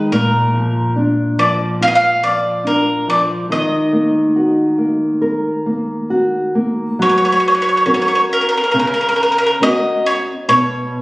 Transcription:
0.00 0.11 D#3 soft
0.12 3.45 A#2 medium
0.12 0.92 A#4 medium
0.54 0.95 F3 soft
0.96 1.37 D4 medium
1.39 1.79 F3 soft
1.39 1.50 D5 medium
1.81 2.21 F4 soft
1.81 1.88 F5 medium
1.88 1.94 D#5 medium
1.95 2.24 F5 medium
2.23 2.63 F3 soft
2.23 2.66 D5 medium
2.64 3.05 D4 medium
2.64 3.09 A#4 medium
3.08 3.48 F3 soft
3.08 3.21 D5 medium
3.50 6.95 D#3 medium
3.50 6.07 D#5 medium
3.93 4.34 A#3 soft
4.36 4.77 F#4 soft
4.78 5.20 A#3 soft
5.22 5.64 A#4 soft
5.66 6.09 A#3 soft
6.10 6.53 F#4 soft
6.55 6.97 A#3 soft
6.99 7.83 F#3 medium
6.99 7.08 C#5 medium
7.09 7.15 C#5 soft
7.18 7.23 C#5 soft
7.25 7.31 C#5 medium
7.32 7.38 C#5 medium
7.40 7.46 C#5 soft
7.48 7.53 C#5 medium
7.55 7.60 C#5 soft
7.62 7.68 C#5 medium
7.69 7.75 C#5 soft
7.77 7.83 C#5 medium
7.86 8.56 C#4 soft
7.86 8.56 F#4 soft
7.86 8.56 A#4 soft
7.86 7.91 C#5 soft
7.94 7.99 C#5 medium
8.02 8.07 C#5 medium
8.08 8.14 C#5 medium
8.15 8.21 C#5 medium
8.33 8.39 A#4 medium
8.41 8.47 A#4 soft
8.49 8.54 A#4 medium
8.57 8.62 A#4 medium
8.64 8.69 A#4 medium
8.71 9.58 C#3 medium
8.71 8.77 A#4 soft
8.79 8.85 A#4 medium
8.87 8.92 A#4 soft
8.94 8.99 A#4 soft
9.01 9.07 A#4 soft
9.09 9.14 A#4 medium
9.16 9.22 A#4 soft
9.23 9.29 A#4 medium
9.32 9.37 A#4 soft
9.38 9.44 A#4 medium
9.46 9.52 A#4 medium
9.61 10.31 C#4 soft
9.61 10.31 F#4 soft
9.61 10.31 A#4 soft
9.61 10.06 D#5 medium
10.06 10.18 C#5 medium
10.48 11.02 B2 medium
10.48 11.02 C#5 medium

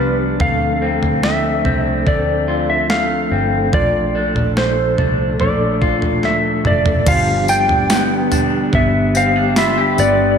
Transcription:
0.00 0.38 C2 medium
0.00 0.58 F3 medium
0.00 7.03 F3 medium
0.00 0.37 G3 medium
0.00 0.37 B3 medium
0.00 0.39 B3 medium
0.00 0.81 D4 soft
0.00 7.03 D4 medium
0.00 2.48 F4 medium
0.00 0.36 G4 medium
0.00 0.16 B4 medium
0.00 0.36 F6 medium
0.40 0.99 D2 medium
0.40 7.02 A3 medium
0.40 1.23 A3 medium
0.40 3.70 C4 medium
0.40 3.70 A4 medium
0.40 1.23 F5 loud
0.40 kick medium
0.40 floor tom loud
0.82 1.64 C4 medium
1.02 1.62 D2 medium
1.02 floor tom medium
1.23 2.06 A3 medium
1.23 1.86 E5 medium
1.23 snare loud
1.64 2.04 C2 medium
1.64 3.30 C4 medium
1.64 floor tom medium
1.86 2.07 D5 medium
2.06 3.28 D2 medium
2.06 2.89 A3 medium
2.06 2.71 D5 medium
2.06 kick medium
2.06 floor tom medium
2.48 5.81 F4 medium
2.70 2.90 E5 medium
2.90 4.56 A3 medium
2.90 3.49 F5 medium
2.90 snare loud
3.31 3.71 G1 medium
3.31 3.82 C4 soft
3.73 4.33 A#1 medium
3.73 7.03 A#2 soft
3.73 7.06 F3 medium
3.73 7.03 A4 medium
3.73 4.53 D5 medium
3.73 kick medium
3.73 floor tom loud
4.15 4.98 D4 medium
4.35 4.95 A#1 medium
4.35 floor tom medium
4.57 5.39 A3 medium
4.57 5.40 C5 medium
4.57 snare medium
4.98 5.38 C2 medium
4.98 6.64 D4 medium
4.98 floor tom medium
5.40 6.23 A#1 medium
5.40 6.22 A3 medium
5.40 6.61 D5 medium
5.40 floor tom medium
5.81 7.93 F4 medium
5.81 kick medium
6.02 floor tom medium
6.23 6.63 D2 medium
6.23 7.15 A3 medium
6.23 6.67 E5 medium
6.23 snare soft
6.65 7.05 F1 medium
6.65 7.48 D4 soft
6.65 7.09 D5 medium
6.65 mid tom medium
6.86 floor tom medium
7.06 8.69 G1 loud
7.06 10.38 D3 medium
7.06 10.38 F3 medium
7.06 10.37 G3 medium
7.06 10.37 B3 medium
7.06 10.37 D4 medium
7.06 10.37 G4 medium
7.06 7.49 F5 medium
7.06 kick medium
7.06 floor tom loud
7.06 crash medium
7.06 tambourine medium
7.48 8.30 D4 medium
7.48 8.78 G5 medium
7.48 8.29 G6 medium
7.48 tambourine medium
7.69 floor tom medium
7.90 8.72 B3 medium
7.90 snare loud
7.90 tambourine loud
8.32 9.14 D4 medium
8.32 floor tom medium
8.32 tambourine medium
8.73 9.94 G1 medium
8.73 9.97 B3 medium
8.73 9.17 E5 medium
8.73 kick medium
8.73 floor tom medium
9.15 9.36 C4 medium
9.15 9.57 F5 medium
9.15 tambourine medium
9.36 10.38 D4 soft
9.56 9.78 F4 medium
9.56 10.00 E5 medium
9.56 10.37 B5 medium
9.56 snare loud
9.56 tambourine medium
9.78 10.38 G4 medium
9.98 10.38 G1 loud
9.98 10.38 B3 medium
9.98 10.38 D5 medium
9.98 tambourine medium

